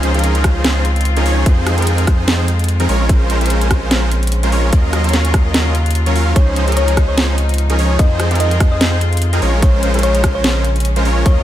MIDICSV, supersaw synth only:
0, 0, Header, 1, 2, 480
1, 0, Start_track
1, 0, Key_signature, -5, "minor"
1, 0, Tempo, 408163
1, 1718, Time_signature, 4, 2, 24, 8
1, 13443, End_track
2, 0, Start_track
2, 0, Title_t, "Supersaw synth"
2, 0, Program_c, 0, 81
2, 0, Note_on_c, 0, 53, 106
2, 0, Note_on_c, 0, 61, 96
2, 0, Note_on_c, 0, 63, 94
2, 0, Note_on_c, 0, 68, 93
2, 0, Note_on_c, 0, 72, 111
2, 139, Note_off_c, 0, 53, 0
2, 139, Note_off_c, 0, 61, 0
2, 139, Note_off_c, 0, 63, 0
2, 139, Note_off_c, 0, 68, 0
2, 139, Note_off_c, 0, 72, 0
2, 171, Note_on_c, 0, 53, 78
2, 171, Note_on_c, 0, 61, 73
2, 171, Note_on_c, 0, 63, 71
2, 171, Note_on_c, 0, 68, 75
2, 171, Note_on_c, 0, 70, 90
2, 492, Note_off_c, 0, 53, 0
2, 492, Note_off_c, 0, 61, 0
2, 492, Note_off_c, 0, 63, 0
2, 492, Note_off_c, 0, 68, 0
2, 492, Note_off_c, 0, 70, 0
2, 518, Note_on_c, 0, 53, 93
2, 518, Note_on_c, 0, 61, 85
2, 518, Note_on_c, 0, 63, 86
2, 518, Note_on_c, 0, 68, 86
2, 518, Note_on_c, 0, 72, 103
2, 716, Note_off_c, 0, 53, 0
2, 716, Note_off_c, 0, 61, 0
2, 716, Note_off_c, 0, 68, 0
2, 717, Note_off_c, 0, 63, 0
2, 717, Note_off_c, 0, 72, 0
2, 758, Note_on_c, 0, 53, 76
2, 758, Note_on_c, 0, 61, 73
2, 758, Note_on_c, 0, 63, 75
2, 758, Note_on_c, 0, 68, 72
2, 758, Note_on_c, 0, 72, 85
2, 972, Note_off_c, 0, 53, 0
2, 972, Note_off_c, 0, 61, 0
2, 972, Note_off_c, 0, 63, 0
2, 972, Note_off_c, 0, 68, 0
2, 972, Note_off_c, 0, 72, 0
2, 1370, Note_on_c, 0, 63, 86
2, 1370, Note_on_c, 0, 68, 88
2, 1370, Note_on_c, 0, 70, 105
2, 1371, Note_on_c, 0, 53, 95
2, 1371, Note_on_c, 0, 61, 87
2, 1452, Note_off_c, 0, 53, 0
2, 1452, Note_off_c, 0, 61, 0
2, 1452, Note_off_c, 0, 63, 0
2, 1452, Note_off_c, 0, 68, 0
2, 1452, Note_off_c, 0, 70, 0
2, 1478, Note_on_c, 0, 53, 94
2, 1478, Note_on_c, 0, 61, 85
2, 1478, Note_on_c, 0, 68, 89
2, 1478, Note_on_c, 0, 73, 104
2, 1479, Note_on_c, 0, 63, 84
2, 1692, Note_off_c, 0, 61, 0
2, 1692, Note_off_c, 0, 68, 0
2, 1692, Note_off_c, 0, 73, 0
2, 1693, Note_off_c, 0, 53, 0
2, 1693, Note_off_c, 0, 63, 0
2, 1719, Note_on_c, 0, 53, 103
2, 1719, Note_on_c, 0, 60, 94
2, 1719, Note_on_c, 0, 63, 95
2, 1719, Note_on_c, 0, 68, 93
2, 1719, Note_on_c, 0, 72, 110
2, 2059, Note_off_c, 0, 53, 0
2, 2059, Note_off_c, 0, 60, 0
2, 2059, Note_off_c, 0, 63, 0
2, 2059, Note_off_c, 0, 68, 0
2, 2059, Note_off_c, 0, 72, 0
2, 2091, Note_on_c, 0, 60, 74
2, 2091, Note_on_c, 0, 70, 90
2, 2092, Note_on_c, 0, 53, 84
2, 2092, Note_on_c, 0, 63, 74
2, 2092, Note_on_c, 0, 68, 75
2, 2413, Note_off_c, 0, 53, 0
2, 2413, Note_off_c, 0, 60, 0
2, 2413, Note_off_c, 0, 63, 0
2, 2413, Note_off_c, 0, 68, 0
2, 2413, Note_off_c, 0, 70, 0
2, 2438, Note_on_c, 0, 53, 94
2, 2636, Note_off_c, 0, 53, 0
2, 2678, Note_on_c, 0, 63, 71
2, 2678, Note_on_c, 0, 68, 72
2, 2678, Note_on_c, 0, 72, 88
2, 2679, Note_on_c, 0, 53, 81
2, 2679, Note_on_c, 0, 60, 70
2, 2892, Note_off_c, 0, 63, 0
2, 2892, Note_off_c, 0, 68, 0
2, 2892, Note_off_c, 0, 72, 0
2, 2893, Note_off_c, 0, 53, 0
2, 2893, Note_off_c, 0, 60, 0
2, 3290, Note_on_c, 0, 70, 108
2, 3291, Note_on_c, 0, 53, 93
2, 3291, Note_on_c, 0, 60, 86
2, 3291, Note_on_c, 0, 63, 89
2, 3291, Note_on_c, 0, 68, 87
2, 3372, Note_off_c, 0, 53, 0
2, 3372, Note_off_c, 0, 60, 0
2, 3372, Note_off_c, 0, 63, 0
2, 3372, Note_off_c, 0, 68, 0
2, 3372, Note_off_c, 0, 70, 0
2, 3397, Note_on_c, 0, 56, 95
2, 3397, Note_on_c, 0, 61, 83
2, 3397, Note_on_c, 0, 65, 85
2, 3397, Note_on_c, 0, 70, 88
2, 3397, Note_on_c, 0, 73, 103
2, 3612, Note_off_c, 0, 56, 0
2, 3612, Note_off_c, 0, 61, 0
2, 3612, Note_off_c, 0, 65, 0
2, 3612, Note_off_c, 0, 70, 0
2, 3612, Note_off_c, 0, 73, 0
2, 3637, Note_on_c, 0, 56, 103
2, 3637, Note_on_c, 0, 70, 96
2, 3637, Note_on_c, 0, 72, 115
2, 3638, Note_on_c, 0, 61, 97
2, 3979, Note_off_c, 0, 56, 0
2, 3979, Note_off_c, 0, 61, 0
2, 3979, Note_off_c, 0, 70, 0
2, 3979, Note_off_c, 0, 72, 0
2, 4010, Note_on_c, 0, 61, 76
2, 4010, Note_on_c, 0, 70, 73
2, 4010, Note_on_c, 0, 72, 87
2, 4011, Note_on_c, 0, 56, 82
2, 4011, Note_on_c, 0, 65, 74
2, 4332, Note_off_c, 0, 56, 0
2, 4332, Note_off_c, 0, 61, 0
2, 4332, Note_off_c, 0, 65, 0
2, 4332, Note_off_c, 0, 70, 0
2, 4332, Note_off_c, 0, 72, 0
2, 4358, Note_on_c, 0, 56, 95
2, 4358, Note_on_c, 0, 61, 87
2, 4557, Note_off_c, 0, 56, 0
2, 4557, Note_off_c, 0, 61, 0
2, 4598, Note_on_c, 0, 56, 79
2, 4598, Note_on_c, 0, 61, 72
2, 4598, Note_on_c, 0, 65, 71
2, 4598, Note_on_c, 0, 70, 69
2, 4598, Note_on_c, 0, 72, 91
2, 4812, Note_off_c, 0, 56, 0
2, 4812, Note_off_c, 0, 61, 0
2, 4812, Note_off_c, 0, 65, 0
2, 4812, Note_off_c, 0, 70, 0
2, 4812, Note_off_c, 0, 72, 0
2, 5211, Note_on_c, 0, 56, 92
2, 5211, Note_on_c, 0, 61, 88
2, 5211, Note_on_c, 0, 65, 85
2, 5211, Note_on_c, 0, 70, 89
2, 5211, Note_on_c, 0, 72, 104
2, 5292, Note_off_c, 0, 56, 0
2, 5292, Note_off_c, 0, 61, 0
2, 5292, Note_off_c, 0, 65, 0
2, 5292, Note_off_c, 0, 70, 0
2, 5292, Note_off_c, 0, 72, 0
2, 5318, Note_on_c, 0, 61, 84
2, 5318, Note_on_c, 0, 70, 85
2, 5318, Note_on_c, 0, 73, 99
2, 5319, Note_on_c, 0, 56, 95
2, 5319, Note_on_c, 0, 65, 84
2, 5532, Note_off_c, 0, 61, 0
2, 5532, Note_off_c, 0, 70, 0
2, 5532, Note_off_c, 0, 73, 0
2, 5533, Note_off_c, 0, 56, 0
2, 5533, Note_off_c, 0, 65, 0
2, 5930, Note_on_c, 0, 54, 79
2, 5930, Note_on_c, 0, 61, 72
2, 5930, Note_on_c, 0, 65, 73
2, 5930, Note_on_c, 0, 70, 75
2, 5930, Note_on_c, 0, 73, 90
2, 6252, Note_off_c, 0, 54, 0
2, 6252, Note_off_c, 0, 61, 0
2, 6252, Note_off_c, 0, 65, 0
2, 6252, Note_off_c, 0, 70, 0
2, 6252, Note_off_c, 0, 73, 0
2, 6278, Note_on_c, 0, 54, 90
2, 6278, Note_on_c, 0, 65, 84
2, 6278, Note_on_c, 0, 70, 83
2, 6278, Note_on_c, 0, 75, 102
2, 6477, Note_off_c, 0, 54, 0
2, 6477, Note_off_c, 0, 65, 0
2, 6477, Note_off_c, 0, 70, 0
2, 6477, Note_off_c, 0, 75, 0
2, 6518, Note_on_c, 0, 54, 78
2, 6518, Note_on_c, 0, 61, 71
2, 6518, Note_on_c, 0, 65, 69
2, 6518, Note_on_c, 0, 70, 74
2, 6518, Note_on_c, 0, 75, 85
2, 6732, Note_off_c, 0, 54, 0
2, 6732, Note_off_c, 0, 61, 0
2, 6732, Note_off_c, 0, 65, 0
2, 6732, Note_off_c, 0, 70, 0
2, 6732, Note_off_c, 0, 75, 0
2, 7130, Note_on_c, 0, 54, 98
2, 7130, Note_on_c, 0, 70, 89
2, 7131, Note_on_c, 0, 61, 90
2, 7131, Note_on_c, 0, 65, 88
2, 7131, Note_on_c, 0, 73, 105
2, 7212, Note_off_c, 0, 54, 0
2, 7212, Note_off_c, 0, 61, 0
2, 7212, Note_off_c, 0, 65, 0
2, 7212, Note_off_c, 0, 70, 0
2, 7212, Note_off_c, 0, 73, 0
2, 7238, Note_on_c, 0, 54, 96
2, 7238, Note_on_c, 0, 61, 86
2, 7238, Note_on_c, 0, 65, 84
2, 7238, Note_on_c, 0, 70, 86
2, 7238, Note_on_c, 0, 77, 100
2, 7452, Note_off_c, 0, 54, 0
2, 7452, Note_off_c, 0, 61, 0
2, 7452, Note_off_c, 0, 65, 0
2, 7452, Note_off_c, 0, 70, 0
2, 7452, Note_off_c, 0, 77, 0
2, 7478, Note_on_c, 0, 53, 105
2, 7478, Note_on_c, 0, 61, 92
2, 7478, Note_on_c, 0, 63, 96
2, 7478, Note_on_c, 0, 68, 94
2, 7478, Note_on_c, 0, 72, 117
2, 7819, Note_off_c, 0, 53, 0
2, 7819, Note_off_c, 0, 61, 0
2, 7819, Note_off_c, 0, 63, 0
2, 7819, Note_off_c, 0, 68, 0
2, 7819, Note_off_c, 0, 72, 0
2, 7851, Note_on_c, 0, 53, 83
2, 7851, Note_on_c, 0, 61, 71
2, 7851, Note_on_c, 0, 63, 75
2, 7851, Note_on_c, 0, 68, 72
2, 7851, Note_on_c, 0, 70, 88
2, 8172, Note_off_c, 0, 53, 0
2, 8172, Note_off_c, 0, 61, 0
2, 8172, Note_off_c, 0, 63, 0
2, 8172, Note_off_c, 0, 68, 0
2, 8172, Note_off_c, 0, 70, 0
2, 8199, Note_on_c, 0, 53, 94
2, 8199, Note_on_c, 0, 61, 82
2, 8199, Note_on_c, 0, 63, 85
2, 8199, Note_on_c, 0, 68, 86
2, 8397, Note_off_c, 0, 53, 0
2, 8397, Note_off_c, 0, 61, 0
2, 8397, Note_off_c, 0, 63, 0
2, 8397, Note_off_c, 0, 68, 0
2, 8438, Note_on_c, 0, 53, 80
2, 8438, Note_on_c, 0, 72, 88
2, 8439, Note_on_c, 0, 61, 72
2, 8439, Note_on_c, 0, 63, 71
2, 8439, Note_on_c, 0, 68, 73
2, 8652, Note_off_c, 0, 53, 0
2, 8653, Note_off_c, 0, 61, 0
2, 8653, Note_off_c, 0, 63, 0
2, 8653, Note_off_c, 0, 68, 0
2, 8653, Note_off_c, 0, 72, 0
2, 9050, Note_on_c, 0, 53, 96
2, 9050, Note_on_c, 0, 61, 86
2, 9050, Note_on_c, 0, 63, 89
2, 9050, Note_on_c, 0, 68, 90
2, 9050, Note_on_c, 0, 70, 101
2, 9132, Note_off_c, 0, 53, 0
2, 9132, Note_off_c, 0, 61, 0
2, 9132, Note_off_c, 0, 63, 0
2, 9132, Note_off_c, 0, 68, 0
2, 9132, Note_off_c, 0, 70, 0
2, 9157, Note_on_c, 0, 53, 93
2, 9157, Note_on_c, 0, 61, 84
2, 9157, Note_on_c, 0, 63, 84
2, 9157, Note_on_c, 0, 68, 85
2, 9157, Note_on_c, 0, 73, 106
2, 9372, Note_off_c, 0, 53, 0
2, 9372, Note_off_c, 0, 61, 0
2, 9372, Note_off_c, 0, 63, 0
2, 9372, Note_off_c, 0, 68, 0
2, 9372, Note_off_c, 0, 73, 0
2, 9397, Note_on_c, 0, 53, 100
2, 9397, Note_on_c, 0, 60, 95
2, 9397, Note_on_c, 0, 63, 94
2, 9398, Note_on_c, 0, 72, 115
2, 9738, Note_off_c, 0, 53, 0
2, 9738, Note_off_c, 0, 63, 0
2, 9739, Note_off_c, 0, 60, 0
2, 9739, Note_off_c, 0, 72, 0
2, 9770, Note_on_c, 0, 63, 74
2, 9771, Note_on_c, 0, 53, 81
2, 9771, Note_on_c, 0, 60, 72
2, 9771, Note_on_c, 0, 68, 71
2, 9771, Note_on_c, 0, 70, 92
2, 10092, Note_off_c, 0, 53, 0
2, 10092, Note_off_c, 0, 60, 0
2, 10092, Note_off_c, 0, 63, 0
2, 10092, Note_off_c, 0, 68, 0
2, 10092, Note_off_c, 0, 70, 0
2, 10118, Note_on_c, 0, 53, 95
2, 10118, Note_on_c, 0, 60, 82
2, 10118, Note_on_c, 0, 63, 83
2, 10316, Note_off_c, 0, 60, 0
2, 10316, Note_off_c, 0, 63, 0
2, 10317, Note_off_c, 0, 53, 0
2, 10358, Note_on_c, 0, 53, 76
2, 10358, Note_on_c, 0, 60, 71
2, 10358, Note_on_c, 0, 63, 70
2, 10358, Note_on_c, 0, 68, 71
2, 10358, Note_on_c, 0, 72, 88
2, 10572, Note_off_c, 0, 53, 0
2, 10572, Note_off_c, 0, 60, 0
2, 10572, Note_off_c, 0, 63, 0
2, 10572, Note_off_c, 0, 68, 0
2, 10572, Note_off_c, 0, 72, 0
2, 10971, Note_on_c, 0, 53, 96
2, 10971, Note_on_c, 0, 60, 86
2, 10971, Note_on_c, 0, 63, 86
2, 10971, Note_on_c, 0, 68, 89
2, 10971, Note_on_c, 0, 70, 108
2, 11053, Note_off_c, 0, 53, 0
2, 11053, Note_off_c, 0, 60, 0
2, 11053, Note_off_c, 0, 63, 0
2, 11053, Note_off_c, 0, 68, 0
2, 11053, Note_off_c, 0, 70, 0
2, 11079, Note_on_c, 0, 56, 91
2, 11079, Note_on_c, 0, 61, 84
2, 11079, Note_on_c, 0, 65, 88
2, 11079, Note_on_c, 0, 70, 84
2, 11079, Note_on_c, 0, 73, 100
2, 11293, Note_off_c, 0, 56, 0
2, 11293, Note_off_c, 0, 61, 0
2, 11293, Note_off_c, 0, 65, 0
2, 11293, Note_off_c, 0, 70, 0
2, 11293, Note_off_c, 0, 73, 0
2, 11319, Note_on_c, 0, 56, 103
2, 11319, Note_on_c, 0, 61, 96
2, 11319, Note_on_c, 0, 70, 97
2, 11659, Note_off_c, 0, 56, 0
2, 11659, Note_off_c, 0, 61, 0
2, 11659, Note_off_c, 0, 70, 0
2, 11691, Note_on_c, 0, 56, 78
2, 11691, Note_on_c, 0, 61, 76
2, 11691, Note_on_c, 0, 65, 73
2, 11691, Note_on_c, 0, 70, 74
2, 11691, Note_on_c, 0, 72, 86
2, 12012, Note_off_c, 0, 72, 0
2, 12013, Note_off_c, 0, 56, 0
2, 12013, Note_off_c, 0, 61, 0
2, 12013, Note_off_c, 0, 65, 0
2, 12013, Note_off_c, 0, 70, 0
2, 12038, Note_on_c, 0, 56, 92
2, 12038, Note_on_c, 0, 61, 86
2, 12038, Note_on_c, 0, 65, 89
2, 12038, Note_on_c, 0, 70, 82
2, 12039, Note_on_c, 0, 72, 104
2, 12237, Note_off_c, 0, 56, 0
2, 12237, Note_off_c, 0, 61, 0
2, 12237, Note_off_c, 0, 65, 0
2, 12237, Note_off_c, 0, 70, 0
2, 12237, Note_off_c, 0, 72, 0
2, 12278, Note_on_c, 0, 61, 74
2, 12279, Note_on_c, 0, 56, 81
2, 12279, Note_on_c, 0, 65, 73
2, 12279, Note_on_c, 0, 70, 74
2, 12279, Note_on_c, 0, 72, 88
2, 12493, Note_off_c, 0, 56, 0
2, 12493, Note_off_c, 0, 61, 0
2, 12493, Note_off_c, 0, 65, 0
2, 12493, Note_off_c, 0, 70, 0
2, 12493, Note_off_c, 0, 72, 0
2, 12891, Note_on_c, 0, 56, 92
2, 12891, Note_on_c, 0, 61, 90
2, 12891, Note_on_c, 0, 65, 93
2, 12891, Note_on_c, 0, 70, 91
2, 12891, Note_on_c, 0, 72, 106
2, 12973, Note_off_c, 0, 56, 0
2, 12973, Note_off_c, 0, 61, 0
2, 12973, Note_off_c, 0, 65, 0
2, 12973, Note_off_c, 0, 70, 0
2, 12973, Note_off_c, 0, 72, 0
2, 12999, Note_on_c, 0, 56, 90
2, 12999, Note_on_c, 0, 61, 89
2, 12999, Note_on_c, 0, 65, 88
2, 12999, Note_on_c, 0, 70, 85
2, 12999, Note_on_c, 0, 73, 108
2, 13213, Note_off_c, 0, 56, 0
2, 13213, Note_off_c, 0, 61, 0
2, 13213, Note_off_c, 0, 65, 0
2, 13213, Note_off_c, 0, 70, 0
2, 13213, Note_off_c, 0, 73, 0
2, 13238, Note_on_c, 0, 70, 95
2, 13239, Note_on_c, 0, 54, 101
2, 13239, Note_on_c, 0, 61, 99
2, 13239, Note_on_c, 0, 65, 94
2, 13239, Note_on_c, 0, 75, 115
2, 13443, Note_off_c, 0, 54, 0
2, 13443, Note_off_c, 0, 61, 0
2, 13443, Note_off_c, 0, 65, 0
2, 13443, Note_off_c, 0, 70, 0
2, 13443, Note_off_c, 0, 75, 0
2, 13443, End_track
0, 0, End_of_file